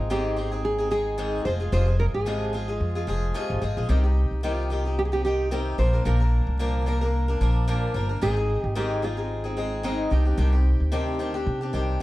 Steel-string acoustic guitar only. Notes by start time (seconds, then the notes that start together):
0.10 G#2 D#3 G#3 C4 D#4 G#4
0.36 G#3 C4 D#4 G#4
0.51 G#3 C4 D#4 G#4
0.78 G#3 C4 D#4 G#4
0.91 G#3 C4 D#4 G#4
1.18 G#2 D#3 G#3 C4 D#4 G#4
1.45 F3 G#3 F4 G#4
1.60 F3 G#3 F4 G#4
1.72 F2 C3 F3 G#3 F4 G#4
1.87 F3 G#3 F4 G#4
2.26 F2 C3 F3 G#3 F4 G#4
2.53 F3 G#3 F4 G#4
2.68 F3 G#3 F4 G#4
2.95 F3 G#3 F4 G#4
3.07 F3 G#3 F4 G#4
3.34 F2 C3 F3 G#3 F4 G#4
3.62 F3 G#3 F4 G#4
3.77 F3 G#3 F4 G#4
3.89 C3 D#3 C4 D#4 G4
4.04 C4 D#4 G4
4.43 C3 D#3 C4 D#4 G4
4.70 D#3 C4 D#4 G4
4.85 C4 D#4 G4
5.12 C4 D#4 G4
5.25 D#3 C4 D#4 G4
5.51 C3 D#3 C4 D#4 G4
5.78 F3 A#3 D4 A#4
5.93 A#3 D4 A#4
6.05 A#2 F3 A#3 D4 A#4
6.20 A#3 D4 A#4
6.59 A#2 F3 A#3 D4 A#4
6.86 F3 A#3 D4 A#4
7.01 A#3 D4 A#4
7.28 A#3 D4 A#4
7.41 F3 A#3 D4 A#4
7.68 A#2 F3 A#3 D4 A#4
7.94 F3 A#3 D4 A#4
8.09 A#3 D4 A#4
8.22 G#2 D#3 G#3 C4 D#4 G#4
8.36 G#3 C4 D#4 G#4
8.75 G#2 D#3 G#3 C4 D#4 G#4
9.02 G#3 C4 D#4 G#4
9.17 G#3 C4 D#4 G#4
9.44 G#3 C4 D#4 G#4
9.57 G#3 C4 D#4 G#4
9.83 G#2 D#3 G#3 C4 D#4 G#4
10.10 D#3 C4 D4 G4
10.25 C4 D4 G4
10.37 C3 D#3 C4 D4 G4
10.53 C4 G4
10.92 C3 D#3 C4 D4 G4
11.19 D#3 C4 D4 G4
11.34 C4 D4 G4
11.61 C4 D4 G4
11.73 D#3 C4 D4 G4